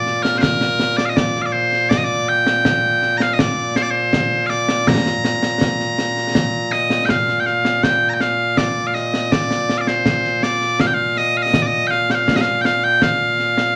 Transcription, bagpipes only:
0.00 13.76 A#2 medium
0.00 0.23 D5 medium
0.23 0.38 A#4 medium
0.38 0.97 A#4 medium
0.38 0.42 C5 medium
0.97 1.05 D5 medium
1.05 1.16 D#5 medium
1.05 1.09 F5 medium
1.16 1.42 D5 medium
1.42 1.46 F5 medium
1.46 1.52 D5 medium
1.52 1.89 C5 medium
1.89 1.97 D5 medium
1.97 2.04 D#5 medium
2.04 2.28 D5 medium
2.29 3.18 G5 loud
3.18 3.22 A#5 medium
3.22 3.33 F5 medium
3.33 3.39 D#5 medium
3.39 3.76 D5 medium
3.76 3.82 C5 loud
3.83 3.91 D5 medium
3.91 4.46 C5 loud
4.46 4.88 D5 medium
4.46 4.50 F5 medium
4.88 6.72 A#5 loud
6.72 7.05 D#5 medium
7.05 7.10 G5 medium
7.10 7.40 F5 medium
7.40 7.46 G5 medium
7.46 7.83 F5 medium
7.83 8.09 G5 medium
8.09 8.14 A#5 medium
8.14 8.21 G5 medium
8.21 8.58 F5 medium
8.58 8.87 D5 medium
8.87 8.94 F5 medium
8.94 9.32 D#5 medium
9.32 9.78 D5 medium
9.78 9.88 D5 medium
9.78 9.81 F5 medium
9.88 10.43 C5 medium
10.43 10.80 D5 medium
10.80 10.87 F5 medium
10.87 10.94 G5 medium
10.94 11.17 F5 medium
11.17 11.37 D#5 medium
11.37 11.42 F5 medium
11.42 11.62 D#5 medium
11.62 11.66 D5 medium
11.66 11.87 D#5 loud
11.87 12.11 F5 loud
11.87 11.91 G5 loud
12.11 12.36 F5 loud
12.11 12.15 G5 medium
12.36 12.41 D#5 medium
12.41 12.61 F5 medium
12.61 12.65 G5 medium
12.65 12.84 F5 medium
12.84 13.03 G5 loud
13.03 13.76 F5 medium

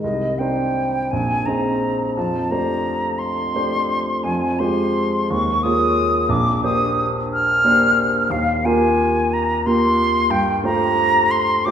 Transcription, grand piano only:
0.04 0.39 C2 soft
0.40 1.08 C4 soft
0.40 1.08 D4 soft
0.40 1.08 D#4 soft
0.40 1.08 C5 soft
1.13 1.46 A#1 medium
1.47 2.13 C4 soft
1.47 2.13 D#4 soft
1.47 2.13 G#4 soft
1.47 2.13 C5 soft
2.17 2.50 F2 soft
2.51 3.50 A3 soft
2.51 3.51 D4 soft
2.51 3.51 G4 soft
2.51 3.51 C5 soft
3.54 4.21 A3 soft
3.54 4.21 D4 soft
3.54 4.21 G4 soft
3.54 4.21 C5 soft
4.24 4.59 F2 soft
4.60 5.27 G#3 soft
4.60 5.27 F4 soft
4.60 5.27 G4 soft
4.60 5.27 C5 soft
5.30 5.63 D#2 medium
5.64 6.26 A#3 soft
5.64 6.26 F4 soft
5.64 6.26 G#4 soft
5.64 6.27 C#5 soft
6.29 6.62 A#1 medium
6.63 7.60 A#3 soft
6.63 7.60 D4 soft
6.63 7.60 G4 soft
6.63 7.61 C5 soft
7.64 8.26 A#3 soft
7.64 8.26 D4 soft
7.64 8.26 G4 soft
7.64 8.27 C5 medium
8.30 8.63 D#2 medium
8.65 9.61 A#3 soft
8.65 9.61 F4 soft
8.65 9.62 G4 soft
8.65 9.62 A#4 soft
9.66 10.27 A#3 soft
9.66 10.27 F4 soft
9.66 10.27 G4 soft
9.66 10.28 A#4 soft
10.30 10.62 G2 medium
10.64 11.62 A3 soft
10.64 11.62 F4 soft
10.64 11.62 G4 soft
10.64 11.63 C5 soft
11.66 11.71 A3 soft
11.66 11.71 F4 soft
11.66 11.71 G4 medium
11.66 11.71 C5 medium

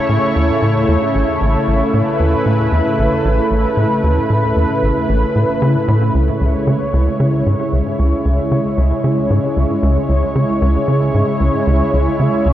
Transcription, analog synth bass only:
0.09 0.18 A2 medium
0.36 0.51 D#2 medium
0.62 0.85 A2 medium
0.88 0.97 E2 medium
1.15 1.24 A1 medium
1.41 1.56 A1 loud
1.67 1.82 A1 medium
1.94 2.03 A2 medium
2.20 2.35 D#2 medium
2.46 2.69 A2 medium
2.72 2.81 E2 medium
2.99 3.08 A1 medium
3.25 3.40 A1 loud
3.51 3.66 A1 medium
3.77 3.87 A2 medium
4.04 4.19 D#2 medium
4.30 4.53 A2 medium
4.56 4.66 E2 medium
4.83 4.92 A1 medium
5.09 5.24 A1 loud
5.36 5.45 A2 medium
5.62 5.77 C#3 medium
5.88 6.11 A2 loud
6.14 6.30 C#2 loud
6.41 6.56 C#2 medium
6.67 6.76 C#3 medium
6.93 7.08 C#2 loud
7.20 7.42 C#3 medium
7.46 7.55 G#2 medium
7.72 7.81 C#2 medium
7.99 8.14 C#2 medium
8.25 8.40 C#2 medium
8.51 8.60 C#3 medium
8.78 8.93 C#2 medium
9.04 9.27 C#3 medium
9.30 9.39 G#2 medium
9.57 9.66 C#2 medium
9.83 9.98 C#2 loud
10.09 10.24 C#2 medium
10.35 10.45 C#3 medium
10.62 10.77 C#2 loud
10.88 11.11 C#3 medium
11.14 11.24 G#2 medium
11.40 11.50 C#2 medium
11.67 11.82 C#2 loud
11.93 12.08 C#2 medium
12.19 12.29 C#3 medium
12.46 12.53 C#2 medium

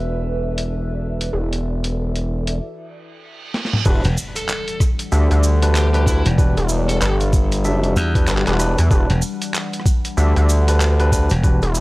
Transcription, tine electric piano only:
3.86 4.06 D4 loud
3.86 4.06 F#4 medium
3.86 4.06 G4 medium
3.86 4.06 B4 loud
5.12 5.58 D4 medium
5.12 5.58 F#4 medium
5.12 5.58 G4 medium
5.12 5.58 E5 loud
5.63 5.88 D4 medium
5.63 5.88 F#4 medium
5.63 5.88 G4 medium
5.63 5.89 B4 loud
5.94 6.05 D4 loud
5.94 6.05 F#4 medium
5.94 6.05 G4 medium
5.94 6.05 B4 loud
6.07 6.27 D4 medium
6.07 6.27 F#4 medium
6.07 6.27 G4 medium
6.07 6.27 B4 medium
6.38 6.59 D4 loud
6.38 6.59 F#4 medium
6.38 6.59 G4 medium
6.38 6.59 B4 loud
7.65 8.11 D4 medium
7.65 8.11 F#4 medium
7.65 8.11 G4 medium
7.65 8.11 E5 loud
8.16 8.41 D4 medium
8.16 8.41 F#4 medium
8.16 8.41 G4 medium
8.16 8.41 B4 loud
8.47 8.58 D4 medium
8.47 8.58 F#4 medium
8.47 8.58 G4 medium
8.47 8.58 B4 loud
8.60 8.80 D4 medium
8.60 8.80 F#4 medium
8.60 8.80 G4 medium
8.60 8.80 B4 medium
8.91 9.12 D4 loud
8.91 9.11 F#4 medium
8.91 9.11 G4 medium
8.91 9.11 B4 loud
10.18 10.64 D4 medium
10.18 10.64 F#4 medium
10.18 10.63 G4 medium
10.18 10.63 E5 loud
10.68 10.94 D4 medium
10.68 10.94 F#4 medium
10.68 10.94 G4 medium
10.68 10.94 B4 loud
11.00 11.11 D4 medium
11.00 11.10 F#4 medium
11.00 11.10 G4 medium
11.00 11.10 B4 loud
11.13 11.33 D4 medium
11.13 11.33 F#4 medium
11.13 11.33 G4 medium
11.13 11.33 B4 medium
11.44 11.64 D4 medium
11.44 11.64 F#4 medium
11.44 11.64 G4 medium
11.44 11.64 B4 loud

